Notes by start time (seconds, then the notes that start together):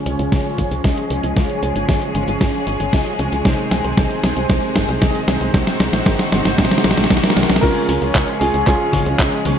Already playing: F3 G#3 C#4 G#4
0.06 C#2 C#3 G#3 C#4 F4 C#5, closed hi-hat, cabasa
0.19 C#2, closed hi-hat, cabasa
0.32 C#2, kick, snare, closed hi-hat, cabasa
0.45 C#3 G#3 C#4 F4 C#5
0.58 G#1, kick, closed hi-hat, cabasa
0.71 C#2, closed hi-hat, cabasa
0.84 C#2 C#3 G#3 C#4 F4 D#5, kick, snare, closed hi-hat, cabasa
0.97 closed hi-hat
1.10 C#2 C#3 G#3 C#4 F4 C#5, closed hi-hat, cabasa
1.23 C#2, closed hi-hat, cabasa
1.37 C#2 C#3 G#3 C#4 F4 C#5, kick, snare, closed hi-hat, cabasa
1.50 closed hi-hat
1.63 C#2, closed hi-hat, cabasa
1.76 G#1 C#3 G#3 C#4 F4 C#5, closed hi-hat, cabasa
1.89 G#1, kick, snare, closed hi-hat, cabasa
2.02 closed hi-hat, cabasa
2.15 G#1 C#3 G#3 C#4 F4 C#5, closed hi-hat, cabasa
2.28 G#1, closed hi-hat, cabasa
2.41 G#1, kick, snare, closed hi-hat, cabasa
2.54 C#3 G#3 C#4 F4 C#5
2.67 G#1, closed hi-hat, cabasa
2.80 G#1, closed hi-hat, cabasa
2.93 C#2 C#3 G#3 C#4 F4 D#5, kick, snare, closed hi-hat, cabasa
3.06 closed hi-hat
3.19 C#2 C3 G#3 C#4 F4 C#5, closed hi-hat, cabasa
3.32 C#2, closed hi-hat, cabasa
3.45 C2 C3 D#3 G#3 C4 D#4 C5, kick, snare, closed hi-hat, cabasa
3.58 closed hi-hat
3.71 C2, snare, closed hi-hat, cabasa
3.84 C2 C3 G#3 C4 D#4 C5, closed hi-hat, cabasa
3.97 C2, kick, snare, closed hi-hat, cabasa
4.11 closed hi-hat, cabasa
4.23 C2 C3 G#3 C4 D#4 C5, snare, closed hi-hat, cabasa
4.37 C2, closed hi-hat, cabasa
4.50 C2, kick, snare, closed hi-hat, cabasa
4.63 C3 G#3 C4 D#4 C5
4.76 G#1, kick, snare, closed hi-hat, cabasa
4.89 C2, closed hi-hat, cabasa
5.02 C2 C3 G#3 C4 D#4 D#5, kick, snare, closed hi-hat, cabasa
5.15 closed hi-hat
5.28 C2 C3 G#3 C4 D#4 C5, snare, closed hi-hat, cabasa
5.41 C2, closed hi-hat, cabasa
5.54 C2 C3 G#3 C4 D#4 F#4 C5, kick, snare, closed hi-hat, cabasa
5.67 snare, closed hi-hat, cabasa
5.80 C2, snare, closed hi-hat, cabasa
5.93 A#1 C3 G#3 C4 D#4 C5, snare, closed hi-hat, cabasa
6.06 G#1, kick, snare, closed hi-hat, cabasa
6.19 snare, closed hi-hat, cabasa
6.32 G#1 C3 G#3 C4 D#4 C5, snare, closed hi-hat, cabasa
6.45 G#1, snare, closed hi-hat, cabasa
6.58 A#1, kick, snare, closed hi-hat, cabasa
6.65 snare
6.71 C3 G#3 C4 D#4 C5, snare, closed hi-hat
6.78 snare
6.84 A#1, snare, closed hi-hat, cabasa
6.91 snare
6.97 A#1, snare, closed hi-hat, cabasa
7.04 snare
7.10 C2, kick, snare, closed hi-hat, cabasa
7.17 snare
7.23 C3 G#3 C4 D#4 A#4, snare, closed hi-hat
7.30 snare
7.37 C2, snare, closed hi-hat, cabasa
7.43 snare
7.50 C2, snare, closed hi-hat, cabasa
7.56 snare
7.61 C#2 C#3 F3 G#3 C#4 F4 G#4 A#4 C#5, kick, closed hi-hat, crash, cabasa
7.89 C#2, open hi-hat, cabasa
8.02 C#2 C#3 G#3 C#4 F4 C#5, closed hi-hat, cabasa
8.15 C#2, kick, clap, closed hi-hat, cabasa
8.28 closed hi-hat, cabasa
8.40 C#2 C#3 G#3 C#4 F4 G#4 C#5, open hi-hat, cabasa
8.54 C#2, closed hi-hat, cabasa
8.66 C#2 F4 G#4, kick, clap, closed hi-hat, cabasa
8.80 C#3 G#3 C#4 F4 C#5
8.93 G#1, kick, open hi-hat, high tom, cabasa
9.06 C#2, closed hi-hat, cabasa
9.19 C#2 C#3 G#3 C#4 F4 D#5, kick, clap, closed hi-hat, cabasa
9.32 closed hi-hat
9.45 C#2 C#3 G#3 C#4 F4 C#5, open hi-hat, high tom, cabasa